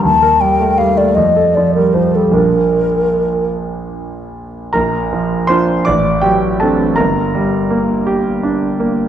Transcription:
X:1
M:6/8
L:1/16
Q:3/8=53
K:Bb
V:1 name="Flute"
a2 g2 f d e2 d B c A | B6 z6 | z12 | z12 |]
V:2 name="Grand piano"
z12 | z12 | [Bb]4 [cc']2 [dd']2 [Gg]2 [Aa]2 | [Bb]8- [Bb]2 z2 |]
V:3 name="Grand piano" clef=bass
E,, B G, A, G, A, F,, A F, G, F, G, | [B,,,F,DB]12 | B,,,2 F,2 [DF]2 A,,,2 ^F,2 [CD]2 | G,,,2 G,2 B,2 G2 D2 B,2 |]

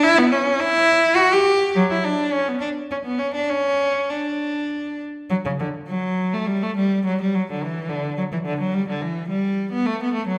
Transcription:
X:1
M:3/4
L:1/16
Q:1/4=105
K:D
V:1 name="Cello"
E B, C2 E4 F G3 | F, E D2 C B, D2 C B, C D | C4 D6 z2 | F, C, D,2 F,3 A, G, A, G,2 |
F, G, F, D, E,2 D,2 F, E, D, F, | G, D, E,2 G,3 B, A, B, A, F, |]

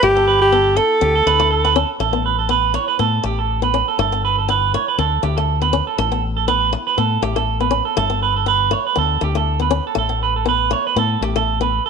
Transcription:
X:1
M:4/4
L:1/16
Q:"Swing 16ths" 1/4=120
K:Amix
V:1 name="Clean electric guitar"
z A B2 A2 A2 G A B2 A B A z | A2 B A B2 c B A2 G A2 B2 A | A2 B A B2 c B A2 G A2 B2 A | A2 z A B2 z B A2 G A2 B2 A |
A2 B A B2 c B A2 G A2 B2 A | A2 B A B2 c B A2 G A2 B2 A |]
V:2 name="Alto saxophone"
G3 G3 A8 z2 | z16 | z16 | z16 |
z16 | z16 |]
V:3 name="Steel-string acoustic guitar"
A, B,2 z B,2 A,2 B,2 A, A,2 B, C2 | A, B,2 z B,2 A,2 B,2 A, z2 B, C2 | A, B,2 z B,2 A,2 z2 A, A,2 B, C2 | A, B,2 z B,2 A,2 B,2 A, A,2 B, C2 |
A, B,2 z B,2 A,2 B,2 A, A,2 B, C2 | A, B,2 z B,2 A,2 B,2 A, A,2 B, z2 |]
V:4 name="Fingered electric bass" clef=bass
G,,,8 D,,2 D,,6 | A,,,8 A,,2 A,,,6 | G,,,8 D,,2 D,,6 | A,,,8 A,,2 A,,,6 |
G,,,8 D,,2 D,,6 | A,,,8 A,,2 A,,,6 |]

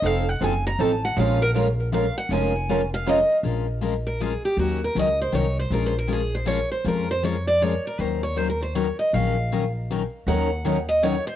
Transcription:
X:1
M:3/4
L:1/16
Q:"Swing" 1/4=158
K:Bbm
V:1 name="Steel-string acoustic guitar"
f2 g2 a2 b2 =a2 g2 | f2 B2 z4 f2 g2 | a6 f2 e3 z | z6 B2 A2 =G2 |
G2 B2 e2 c2 d2 c2 | (3B2 c2 B2 A2 c2 d2 c2 | B2 c2 d2 =d2 _d2 B2 | c2 d2 (3c2 B2 c2 d2 e2 |
f6 z6 | g6 e2 d2 c2 |]
V:2 name="Steel-string acoustic guitar"
[F,CE=A]2 z2 [F,CEA] z3 [F,CEA] z3 | [F,A,DFB]2 z2 [F,A,DFB] z3 [F,A,DFB] z3 | [F,A,DFB]2 z2 [F,A,DFB] z3 [F,A,DFB] z3 | [F,A,DFB]2 z2 [F,A,DFB] z3 [F,A,DFB] z3 |
[E,G,DEB]2 z2 [E,G,DEB] z3 [E,G,DEB] z3 | [F,A,DFB]2 z2 [F,A,DFB] z3 [F,A,DFB] z3 | [F,A,DFB]2 z2 [F,A,DFB] z3 [F,A,DFB] z3 | [E,G,DEB]2 z2 [E,G,DEB] z3 [E,G,DEB] z3 |
[E,G,DEB]2 z2 [E,G,DEB] z3 [E,G,DEB] z3 | [E,G,DEB]2 z2 [E,G,DEB] z3 [E,G,DEB] z3 |]
V:3 name="Steel-string acoustic guitar"
[F,CE=A]2 z2 [F,CEA] z3 [F,CEA] z3 | [F,A,DFB]2 z2 [F,A,DFB] z3 [F,A,DFB] z3 | [F,A,DFB]2 z2 [F,A,DFB] z3 [F,A,DFB] z3 | z12 |
z12 | z12 | z12 | z12 |
z12 | [E,G,DEB]2 z2 [E,G,DEB] z3 [E,G,DEB] z3 |]
V:4 name="Upright bass" clef=bass
F,,,4 G,,,4 =A,,,4 | B,,,12 | F,,,12 | B,,,12 |
E,,4 D,,4 C,,4 | B,,,12 | F,,12 | E,,12 |
B,,,12 | E,,12 |]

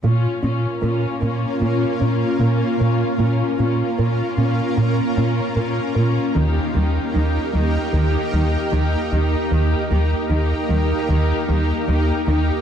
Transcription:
X:1
M:4/4
L:1/8
Q:1/4=76
K:Ebm
V:1 name="Ambient pad"
[B,DFB]8 | [B,DFB]8 | [B,E=GB]8 | [B,E=GB]8 |]
V:2 name="Viola section"
[DF] [DF] [DF] [DF] [DF] [DF] [DF] [DF] | [DF] [DF] [DF] [DF] [DF] [DF] [DF] [DF] | [E=G] [EG] [EG] [EG] [EG] [EG] [EG] [EG] | [E=G] [EG] [EG] [EG] [EG] [EG] [EG] [EG] |]
V:3 name="Synth arpeggio sound"
B, D B D B, D B B | B, D B D B, D B B | E, =G, E G, E, G, E E | E, =G, E G, E, G, E E |]
V:4 name="Cello section" clef=bass
B,, B,, B,, B,, B,, B,, B,, B,, | B,, B,, B,, B,, B,, B,, B,, B,, | E, E, E, E, E, E, E, E, | E, E, E, E, E, E, E, E, |]
V:5 name="Analog synth bass" clef=bass
B,, B,, B,, B,, B,, B,, B,, B,, | B,, B,, B,, B,, B,, B,, B,, B,, | E,, E,, E,, E,, E,, E,, E,, E,, | E,, E,, E,, E,, E,, E,, E,, E,, |]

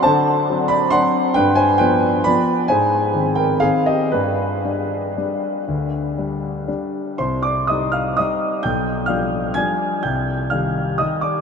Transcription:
X:1
M:3/4
L:1/8
Q:1/4=126
K:Cm
V:1 name="Grand piano"
[c=a]3 [d=b] [^fc']2 | [=Bg] [ca] [Bg]2 [d=b]2 | [ca]3 [Bg] [Af] [Ge] | [D=B]6- |
[D=B]4 z2 | [cc'] [dd'] [ee'] [ff'] [ee']2 | [gg']2 [ff']2 [aa']2 | [gg']2 [ff']2 [ee'] [dd'] |]
V:2 name="Grand piano" clef=bass
D,2 [^F,CD]2 [F,CD]2 | G,,2 [F,=B,D]2 [F,B,D]2 | A,,2 [E,C]2 [E,C]2 | G,,2 [G,D]2 [G,D]2 |
D,,2 [G,D]2 [G,D]2 | C,,2 [G,E]2 [G,E]2 | =B,,,2 [F,G,D]2 [F,G,D]2 | C,,2 [E,G,G]2 [E,G,G]2 |]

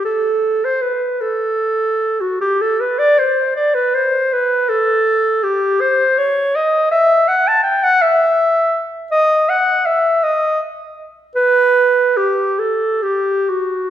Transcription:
X:1
M:6/8
L:1/16
Q:3/8=53
K:Ador
V:1 name="Clarinet"
A3 c B2 A4- A F | G A B d c2 d B c2 B2 | A4 G2 c2 ^c2 ^d2 | e2 f a g f e4- e z |
^d2 f2 e2 d2 z4 | B4 G2 A2 G2 F2 |]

